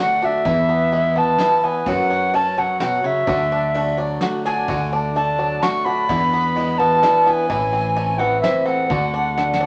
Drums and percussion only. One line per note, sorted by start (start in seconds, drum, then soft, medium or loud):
0.45 kick medium
0.45 ride soft
0.92 ride soft
1.38 snare medium
1.38 ride medium
1.86 kick medium
1.86 ride medium
2.33 ride medium
2.80 snare medium
2.80 ride medium
3.27 kick loud
3.27 ride medium
3.74 ride medium
4.21 snare medium
4.21 ride soft
4.68 kick loud
4.68 ride medium
5.16 ride soft
5.63 snare medium
5.63 ride medium
6.09 kick medium
6.09 ride medium
6.57 ride soft
7.03 snare medium
7.03 ride medium
7.50 kick loud
7.50 ride medium
7.97 ride medium
8.44 snare medium
8.44 ride soft
8.90 kick medium
8.90 ride medium
9.38 snare soft
9.53 snare medium